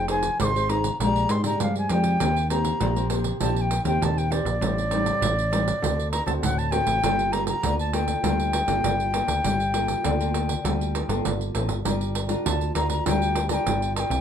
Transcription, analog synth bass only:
0.00 0.31 F1 loud
0.40 0.91 G#1 medium
1.00 1.26 A#1 medium
1.30 1.57 G#2 medium
1.61 1.88 G2 medium
1.90 2.17 F2 medium
2.20 2.72 D#2 medium
2.81 3.32 A#1 medium
3.41 3.80 A#1 medium
3.85 3.99 D#2 medium
4.02 4.40 D#2 medium
4.45 4.59 A#1 medium
4.61 5.13 A1 medium
5.21 5.73 A1 loud
5.83 6.21 D2 medium
6.27 6.40 D2 medium
6.43 6.81 D2 medium
6.87 7.00 A1 medium
7.03 7.54 G1 loud
7.63 8.15 D2 loud
8.24 8.62 D2 medium
8.68 8.81 G1 medium
8.84 9.23 G1 medium
9.28 9.41 D2 medium
9.44 9.96 G1 medium
10.05 10.56 D2 loud
10.65 11.03 D2 medium
11.09 11.22 G1 medium
11.26 11.51 G1 medium
11.55 11.69 A1 medium
11.69 11.83 G1 medium
11.85 12.37 G1 medium
12.46 12.72 D2 medium
12.75 13.01 D2 medium
13.06 13.58 D2 medium
13.66 14.05 G1 medium
14.10 14.21 C2 medium

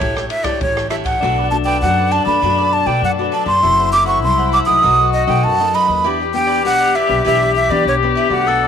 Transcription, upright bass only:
0.01 0.27 A1 medium
0.61 1.13 A1 medium
1.23 1.84 B1 medium
1.82 2.21 F#2 loud
2.26 2.39 F#2 medium
2.42 2.81 F#2 medium
2.86 3.00 B2 medium
3.02 3.28 F#2 medium
3.46 3.65 F#2 medium
3.63 4.23 F#1 medium
4.23 4.62 C2 medium
4.68 4.81 C2 medium
4.84 5.23 B1 loud
5.27 5.41 B2 loud
5.44 5.70 F#2 medium
5.88 6.05 D#2 medium
6.05 6.66 E2 medium
6.66 7.04 B1 medium
7.09 7.23 B1 medium
7.26 7.64 B1 medium
7.69 7.83 E3 medium
7.85 8.11 B1 medium
8.30 8.47 C2 medium
8.47 8.68 B1 medium

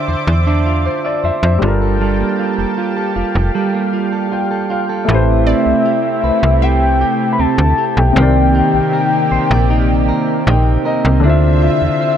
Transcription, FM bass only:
0.08 0.16 E2 soft
0.27 0.89 E2 medium
1.24 1.32 F2 soft
1.43 1.58 F2 medium
1.62 2.24 G1 loud
2.58 2.66 F1 medium
3.16 3.24 F1 soft
3.35 3.51 F1 medium
5.09 5.55 A1 loud
5.66 5.74 C2 soft
6.24 6.32 C2 soft
6.43 7.05 C2 medium
7.39 7.47 D2 soft
7.58 7.74 D2 medium
7.97 8.12 B1 medium
8.16 8.62 C2 loud
8.74 8.82 A#1 soft
9.32 9.39 A#1 soft
9.51 10.12 A#1 medium
10.47 10.78 A#1 loud
11.05 11.25 C2 loud
11.24 11.70 D2 loud
11.82 11.89 E2 soft

